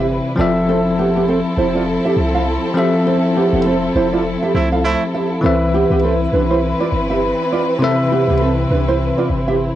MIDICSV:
0, 0, Header, 1, 6, 480
1, 0, Start_track
1, 0, Key_signature, 0, "major"
1, 0, Tempo, 594059
1, 553, Time_signature, 4, 2, 24, 8
1, 7880, End_track
2, 0, Start_track
2, 0, Title_t, "Nylon-string guitar"
2, 0, Program_c, 0, 24
2, 316, Note_on_c, 0, 74, 75
2, 322, Note_on_c, 0, 65, 55
2, 387, Note_off_c, 0, 74, 0
2, 392, Note_off_c, 0, 65, 0
2, 556, Note_on_c, 0, 69, 95
2, 562, Note_on_c, 0, 60, 73
2, 627, Note_off_c, 0, 69, 0
2, 631, Note_off_c, 0, 60, 0
2, 798, Note_on_c, 0, 67, 87
2, 804, Note_on_c, 0, 59, 70
2, 868, Note_off_c, 0, 67, 0
2, 873, Note_off_c, 0, 59, 0
2, 936, Note_on_c, 0, 67, 76
2, 943, Note_on_c, 0, 59, 59
2, 987, Note_off_c, 0, 67, 0
2, 992, Note_off_c, 0, 59, 0
2, 1036, Note_on_c, 0, 69, 88
2, 1042, Note_on_c, 0, 60, 67
2, 1107, Note_off_c, 0, 69, 0
2, 1112, Note_off_c, 0, 60, 0
2, 1277, Note_on_c, 0, 72, 76
2, 1284, Note_on_c, 0, 64, 59
2, 1348, Note_off_c, 0, 72, 0
2, 1353, Note_off_c, 0, 64, 0
2, 1416, Note_on_c, 0, 74, 79
2, 1423, Note_on_c, 0, 65, 62
2, 1467, Note_off_c, 0, 74, 0
2, 1472, Note_off_c, 0, 65, 0
2, 1657, Note_on_c, 0, 76, 77
2, 1663, Note_on_c, 0, 67, 62
2, 1707, Note_off_c, 0, 76, 0
2, 1712, Note_off_c, 0, 67, 0
2, 1895, Note_on_c, 0, 77, 79
2, 1902, Note_on_c, 0, 69, 61
2, 1947, Note_off_c, 0, 77, 0
2, 1952, Note_off_c, 0, 69, 0
2, 2238, Note_on_c, 0, 76, 72
2, 2243, Note_on_c, 0, 67, 55
2, 2308, Note_off_c, 0, 76, 0
2, 2312, Note_off_c, 0, 67, 0
2, 2478, Note_on_c, 0, 69, 98
2, 2484, Note_on_c, 0, 60, 76
2, 2549, Note_off_c, 0, 69, 0
2, 2553, Note_off_c, 0, 60, 0
2, 2717, Note_on_c, 0, 67, 88
2, 2724, Note_on_c, 0, 59, 69
2, 2788, Note_off_c, 0, 67, 0
2, 2792, Note_off_c, 0, 59, 0
2, 2856, Note_on_c, 0, 67, 75
2, 2862, Note_on_c, 0, 59, 60
2, 2907, Note_off_c, 0, 67, 0
2, 2911, Note_off_c, 0, 59, 0
2, 2957, Note_on_c, 0, 69, 87
2, 2963, Note_on_c, 0, 60, 68
2, 3028, Note_off_c, 0, 69, 0
2, 3032, Note_off_c, 0, 60, 0
2, 3197, Note_on_c, 0, 72, 75
2, 3203, Note_on_c, 0, 64, 61
2, 3267, Note_off_c, 0, 72, 0
2, 3272, Note_off_c, 0, 64, 0
2, 3336, Note_on_c, 0, 74, 78
2, 3343, Note_on_c, 0, 65, 60
2, 3387, Note_off_c, 0, 74, 0
2, 3392, Note_off_c, 0, 65, 0
2, 3575, Note_on_c, 0, 76, 81
2, 3582, Note_on_c, 0, 67, 61
2, 3626, Note_off_c, 0, 76, 0
2, 3631, Note_off_c, 0, 67, 0
2, 3815, Note_on_c, 0, 77, 80
2, 3822, Note_on_c, 0, 69, 64
2, 3866, Note_off_c, 0, 77, 0
2, 3872, Note_off_c, 0, 69, 0
2, 4157, Note_on_c, 0, 76, 72
2, 4163, Note_on_c, 0, 67, 56
2, 4227, Note_off_c, 0, 76, 0
2, 4232, Note_off_c, 0, 67, 0
2, 4396, Note_on_c, 0, 69, 95
2, 4402, Note_on_c, 0, 60, 72
2, 4467, Note_off_c, 0, 69, 0
2, 4471, Note_off_c, 0, 60, 0
2, 4638, Note_on_c, 0, 67, 88
2, 4645, Note_on_c, 0, 59, 69
2, 4709, Note_off_c, 0, 67, 0
2, 4714, Note_off_c, 0, 59, 0
2, 4776, Note_on_c, 0, 67, 79
2, 4782, Note_on_c, 0, 59, 59
2, 4827, Note_off_c, 0, 67, 0
2, 4831, Note_off_c, 0, 59, 0
2, 4877, Note_on_c, 0, 69, 86
2, 4883, Note_on_c, 0, 60, 64
2, 4948, Note_off_c, 0, 69, 0
2, 4952, Note_off_c, 0, 60, 0
2, 5117, Note_on_c, 0, 71, 80
2, 5124, Note_on_c, 0, 62, 62
2, 5188, Note_off_c, 0, 71, 0
2, 5193, Note_off_c, 0, 62, 0
2, 5258, Note_on_c, 0, 72, 77
2, 5264, Note_on_c, 0, 64, 58
2, 5308, Note_off_c, 0, 72, 0
2, 5313, Note_off_c, 0, 64, 0
2, 5498, Note_on_c, 0, 74, 78
2, 5505, Note_on_c, 0, 65, 62
2, 5548, Note_off_c, 0, 74, 0
2, 5554, Note_off_c, 0, 65, 0
2, 5738, Note_on_c, 0, 76, 78
2, 5744, Note_on_c, 0, 67, 60
2, 5788, Note_off_c, 0, 76, 0
2, 5793, Note_off_c, 0, 67, 0
2, 6079, Note_on_c, 0, 74, 71
2, 6085, Note_on_c, 0, 65, 54
2, 6149, Note_off_c, 0, 74, 0
2, 6154, Note_off_c, 0, 65, 0
2, 6320, Note_on_c, 0, 69, 98
2, 6327, Note_on_c, 0, 60, 72
2, 6390, Note_off_c, 0, 69, 0
2, 6395, Note_off_c, 0, 60, 0
2, 6560, Note_on_c, 0, 67, 88
2, 6567, Note_on_c, 0, 59, 71
2, 6630, Note_off_c, 0, 67, 0
2, 6635, Note_off_c, 0, 59, 0
2, 6698, Note_on_c, 0, 67, 77
2, 6705, Note_on_c, 0, 59, 62
2, 6749, Note_off_c, 0, 67, 0
2, 6754, Note_off_c, 0, 59, 0
2, 6799, Note_on_c, 0, 69, 88
2, 6805, Note_on_c, 0, 60, 67
2, 6869, Note_off_c, 0, 69, 0
2, 6874, Note_off_c, 0, 60, 0
2, 7039, Note_on_c, 0, 71, 80
2, 7045, Note_on_c, 0, 62, 61
2, 7109, Note_off_c, 0, 71, 0
2, 7114, Note_off_c, 0, 62, 0
2, 7178, Note_on_c, 0, 72, 78
2, 7184, Note_on_c, 0, 64, 61
2, 7228, Note_off_c, 0, 72, 0
2, 7233, Note_off_c, 0, 64, 0
2, 7416, Note_on_c, 0, 74, 82
2, 7422, Note_on_c, 0, 65, 63
2, 7467, Note_off_c, 0, 74, 0
2, 7472, Note_off_c, 0, 65, 0
2, 7658, Note_on_c, 0, 76, 81
2, 7664, Note_on_c, 0, 67, 63
2, 7708, Note_off_c, 0, 76, 0
2, 7713, Note_off_c, 0, 67, 0
2, 7880, End_track
3, 0, Start_track
3, 0, Title_t, "Tine electric piano"
3, 0, Program_c, 1, 4
3, 0, Control_c, 1, 64, 127
3, 0, Note_on_c, 1, 48, 84
3, 0, Note_on_c, 1, 60, 74
3, 0, Note_on_c, 1, 71, 70
3, 0, Note_on_c, 1, 76, 90
3, 269, Note_off_c, 1, 48, 0
3, 276, Note_off_c, 1, 60, 0
3, 283, Note_off_c, 1, 71, 0
3, 290, Note_off_c, 1, 76, 0
3, 290, Note_on_c, 1, 53, 78
3, 303, Note_on_c, 1, 60, 72
3, 317, Note_on_c, 1, 69, 69
3, 324, Control_c, 1, 64, 0
3, 331, Note_on_c, 1, 76, 83
3, 468, Control_c, 1, 64, 127
3, 2189, Note_off_c, 1, 53, 0
3, 2196, Note_off_c, 1, 60, 0
3, 2203, Note_off_c, 1, 69, 0
3, 2210, Note_off_c, 1, 76, 0
3, 2211, Note_on_c, 1, 53, 78
3, 2225, Note_on_c, 1, 60, 69
3, 2239, Note_on_c, 1, 69, 70
3, 2252, Note_on_c, 1, 76, 85
3, 4110, Note_off_c, 1, 53, 0
3, 4117, Note_off_c, 1, 60, 0
3, 4124, Note_off_c, 1, 69, 0
3, 4130, Note_off_c, 1, 76, 0
3, 4372, Note_on_c, 1, 52, 78
3, 4385, Note_on_c, 1, 60, 72
3, 4398, Note_on_c, 1, 71, 75
3, 4404, Control_c, 1, 64, 0
3, 4412, Note_on_c, 1, 76, 91
3, 4549, Control_c, 1, 64, 127
3, 6270, Note_off_c, 1, 52, 0
3, 6277, Note_off_c, 1, 60, 0
3, 6284, Note_off_c, 1, 71, 0
3, 6291, Note_off_c, 1, 76, 0
3, 6292, Note_on_c, 1, 48, 83
3, 6307, Note_on_c, 1, 60, 72
3, 6320, Note_on_c, 1, 71, 72
3, 6333, Note_on_c, 1, 76, 88
3, 7880, Note_off_c, 1, 48, 0
3, 7880, Note_off_c, 1, 60, 0
3, 7880, Note_off_c, 1, 71, 0
3, 7880, Note_off_c, 1, 76, 0
3, 7880, End_track
4, 0, Start_track
4, 0, Title_t, "Horn section"
4, 0, Program_c, 2, 61
4, 3674, Note_on_c, 2, 64, 90
4, 3675, Note_on_c, 2, 57, 83
4, 3675, Note_on_c, 2, 60, 82
4, 3792, Note_off_c, 2, 60, 0
4, 3792, Note_off_c, 2, 64, 0
4, 3793, Note_off_c, 2, 57, 0
4, 3913, Note_on_c, 2, 57, 97
4, 3913, Note_on_c, 2, 60, 91
4, 3913, Note_on_c, 2, 64, 104
4, 4066, Note_off_c, 2, 57, 0
4, 4066, Note_off_c, 2, 60, 0
4, 4067, Note_off_c, 2, 64, 0
4, 7880, End_track
5, 0, Start_track
5, 0, Title_t, "String section"
5, 0, Program_c, 3, 48
5, 0, Note_on_c, 3, 55, 74
5, 0, Note_on_c, 3, 60, 84
5, 0, Note_on_c, 3, 64, 72
5, 0, Note_on_c, 3, 71, 92
5, 281, Note_off_c, 3, 55, 0
5, 281, Note_off_c, 3, 60, 0
5, 281, Note_off_c, 3, 71, 0
5, 311, Note_on_c, 3, 53, 85
5, 311, Note_on_c, 3, 60, 80
5, 311, Note_on_c, 3, 69, 90
5, 4360, Note_off_c, 3, 53, 0
5, 4360, Note_off_c, 3, 60, 0
5, 4360, Note_off_c, 3, 69, 0
5, 4393, Note_on_c, 3, 52, 80
5, 4393, Note_on_c, 3, 60, 76
5, 4394, Note_on_c, 3, 71, 91
5, 7880, Note_off_c, 3, 52, 0
5, 7880, Note_off_c, 3, 60, 0
5, 7880, Note_off_c, 3, 64, 0
5, 7880, Note_off_c, 3, 71, 0
5, 7880, End_track
6, 0, Start_track
6, 0, Title_t, "808-style bass"
6, 0, Program_c, 4, 38
6, 0, Note_on_c, 4, 31, 91
6, 161, Note_off_c, 4, 31, 0
6, 311, Note_on_c, 4, 29, 99
6, 1143, Note_off_c, 4, 29, 0
6, 1271, Note_on_c, 4, 29, 94
6, 1600, Note_off_c, 4, 29, 0
6, 1751, Note_on_c, 4, 36, 94
6, 2080, Note_off_c, 4, 36, 0
6, 2851, Note_on_c, 4, 29, 99
6, 3147, Note_off_c, 4, 29, 0
6, 3193, Note_on_c, 4, 29, 97
6, 3522, Note_off_c, 4, 29, 0
6, 3672, Note_on_c, 4, 36, 89
6, 4001, Note_off_c, 4, 36, 0
6, 4393, Note_on_c, 4, 36, 102
6, 4722, Note_off_c, 4, 36, 0
6, 4771, Note_on_c, 4, 36, 94
6, 5067, Note_off_c, 4, 36, 0
6, 5113, Note_on_c, 4, 35, 88
6, 5442, Note_off_c, 4, 35, 0
6, 5594, Note_on_c, 4, 31, 87
6, 5922, Note_off_c, 4, 31, 0
6, 6693, Note_on_c, 4, 36, 93
6, 6988, Note_off_c, 4, 36, 0
6, 7034, Note_on_c, 4, 36, 89
6, 7362, Note_off_c, 4, 36, 0
6, 7513, Note_on_c, 4, 31, 90
6, 7842, Note_off_c, 4, 31, 0
6, 7880, End_track
0, 0, End_of_file